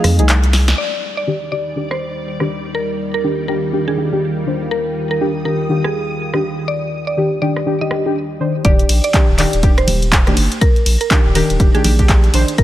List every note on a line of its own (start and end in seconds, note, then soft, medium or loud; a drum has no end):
0.04 0.20 F2 medium
0.04 cross-stick medium
0.04 open hi-hat loud
0.04 high conga medium
0.04 low conga loud
0.18 0.74 C2 loud
0.18 0.26 F3 medium
0.18 0.27 D#4 medium
0.18 0.27 G#4 medium
0.18 closed hi-hat medium
0.18 high conga medium
0.29 clap loud
0.29 closed hi-hat medium
0.43 closed hi-hat soft
0.53 snare medium
0.53 open hi-hat loud
0.68 snare loud
0.68 closed hi-hat medium
0.78 8.61 D#3 medium
0.78 8.65 D#3 medium
0.78 8.61 G3 medium
0.78 4.67 D5 medium
0.78 1.01 D5 loud
1.17 8.65 A#4 medium
1.17 1.40 D5 medium
1.27 1.39 D#3 medium
1.27 1.39 D4 medium
1.27 1.39 G4 loud
1.52 1.74 D#3 medium
1.52 1.74 D4 medium
1.52 1.74 G4 medium
1.52 1.75 D5 medium
1.76 2.36 D#3 medium
1.76 2.37 D4 medium
1.76 2.37 G4 loud
1.91 2.05 C5 medium
1.91 cross-stick medium
2.09 8.65 F5 medium
2.40 2.48 D#3 medium
2.40 2.48 D4 medium
2.40 2.48 G4 medium
2.40 cross-stick medium
2.75 2.98 A#4 medium
3.09 8.65 G5 medium
3.14 3.37 A#4 medium
3.24 3.46 D#3 medium
3.24 3.46 D4 medium
3.24 3.46 G4 loud
3.48 3.70 D#3 medium
3.48 3.71 D4 medium
3.48 3.71 G4 loud
3.48 3.72 A#4 medium
3.73 3.84 D#3 medium
3.73 3.85 D4 medium
3.73 3.85 G4 medium
3.88 3.96 D#3 medium
3.88 3.96 D4 medium
3.88 3.96 G4 medium
3.88 4.01 G#4 medium
3.97 4.10 D#3 medium
3.97 4.10 D4 medium
3.97 4.10 G4 medium
4.12 4.44 D#3 medium
4.12 4.44 D4 medium
4.12 4.45 G4 medium
4.46 5.18 D#3 medium
4.46 5.18 D4 medium
4.46 5.19 C5 medium
4.71 4.95 A#4 loud
4.71 8.61 D#6 medium
5.11 5.33 A#4 medium
5.20 5.32 D#3 medium
5.20 5.32 D4 medium
5.20 5.32 G4 loud
5.45 5.67 D#3 medium
5.45 5.67 D4 medium
5.45 5.68 G4 medium
5.45 5.68 A#4 medium
5.69 6.30 D#3 medium
5.69 6.30 D4 medium
5.69 6.30 G4 loud
5.84 5.98 G#4 medium
5.84 cross-stick medium
6.33 6.41 D#3 medium
6.33 6.41 D4 medium
6.33 6.42 G4 medium
6.33 cross-stick medium
6.68 6.91 D5 loud
7.07 7.30 D5 medium
7.17 7.39 D#3 medium
7.17 7.39 D4 medium
7.17 7.40 G4 loud
7.41 7.64 D#3 medium
7.41 7.64 D4 medium
7.41 7.64 G4 loud
7.41 7.65 D5 medium
7.56 cross-stick medium
7.66 7.78 D#3 medium
7.66 7.78 D4 medium
7.66 7.78 G4 medium
7.81 7.89 D#3 medium
7.81 7.89 D4 medium
7.81 7.89 G4 loud
7.81 7.95 D#5 medium
7.91 8.03 D#3 medium
7.91 8.04 D4 medium
7.91 8.04 G4 medium
7.91 cross-stick medium
8.05 8.38 D#3 medium
8.05 8.38 D4 medium
8.05 8.38 G4 medium
8.40 8.63 D#3 medium
8.40 8.64 D4 medium
8.40 8.90 C5 loud
8.65 8.84 D#1 loud
8.65 9.10 D#3 loud
8.65 9.10 D4 medium
8.65 9.10 G4 loud
8.65 8.88 D5 loud
8.65 kick loud
8.65 closed hi-hat medium
8.79 closed hi-hat soft
8.89 9.00 A#1 loud
8.89 open hi-hat loud
8.89 ride medium
9.04 9.27 D5 loud
9.04 closed hi-hat medium
9.14 9.25 D#3 medium
9.14 9.26 D4 medium
9.14 9.26 G4 loud
9.14 kick loud
9.14 clap loud
9.14 closed hi-hat medium
9.29 9.45 D#1 loud
9.38 9.61 D#3 medium
9.38 9.61 D4 medium
9.38 9.61 G4 medium
9.38 9.62 D5 medium
9.38 clap soft
9.38 open hi-hat loud
9.38 ride medium
9.53 9.84 D#1 medium
9.53 closed hi-hat medium
9.62 10.23 D#3 medium
9.62 10.24 D4 medium
9.62 10.24 G4 loud
9.62 kick loud
9.62 closed hi-hat medium
9.78 9.91 C5 medium
9.78 cross-stick medium
9.78 closed hi-hat soft
9.87 10.33 D#1 medium
9.87 open hi-hat loud
9.87 ride medium
9.87 high conga medium
9.87 low conga loud
10.02 closed hi-hat medium
10.12 kick loud
10.12 clap loud
10.12 closed hi-hat medium
10.27 10.35 D#3 medium
10.27 10.35 D4 medium
10.27 10.35 G4 medium
10.27 cross-stick medium
10.27 closed hi-hat soft
10.27 high conga loud
10.37 10.48 G1 loud
10.37 open hi-hat loud
10.37 ride medium
10.52 closed hi-hat medium
10.61 10.85 A#4 loud
10.61 kick loud
10.61 closed hi-hat medium
10.76 closed hi-hat soft
10.86 10.97 A#1 loud
10.86 open hi-hat loud
10.86 ride medium
11.01 11.23 A#4 medium
11.01 closed hi-hat medium
11.11 11.33 D#3 medium
11.11 11.33 D4 medium
11.11 11.33 G4 loud
11.11 kick loud
11.11 clap loud
11.11 closed hi-hat medium
11.25 11.42 D#1 loud
11.35 11.57 D#3 loud
11.35 11.58 D4 medium
11.35 11.58 G4 loud
11.35 11.59 A#4 medium
11.35 open hi-hat loud
11.35 ride medium
11.50 11.57 D#1 medium
11.50 closed hi-hat medium
11.60 11.71 D#1 medium
11.60 11.71 D#3 medium
11.60 11.71 D4 medium
11.60 11.72 G4 medium
11.60 kick loud
11.60 closed hi-hat medium
11.74 11.82 D#3 medium
11.74 11.83 D4 medium
11.74 11.83 G4 loud
11.74 11.88 G#4 medium
11.74 closed hi-hat soft
11.74 high conga medium
11.84 12.29 A#1 medium
11.84 11.97 D#3 medium
11.84 11.97 D4 medium
11.84 11.97 G4 medium
11.84 open hi-hat loud
11.84 ride medium
11.84 high conga medium
11.84 low conga medium
11.99 12.31 D#3 medium
11.99 12.31 D4 medium
11.99 12.31 G4 loud
11.99 kick medium
11.99 closed hi-hat medium
11.99 high conga medium
12.09 kick loud
12.09 clap loud
12.09 closed hi-hat medium
12.24 closed hi-hat soft
12.33 12.44 A#1 medium
12.33 12.64 D#3 medium
12.33 12.64 D4 medium
12.33 12.64 C5 loud
12.33 open hi-hat loud
12.33 ride medium
12.48 closed hi-hat medium
12.58 12.64 D#1 loud
12.58 12.64 A#4 loud
12.58 kick loud
12.58 closed hi-hat medium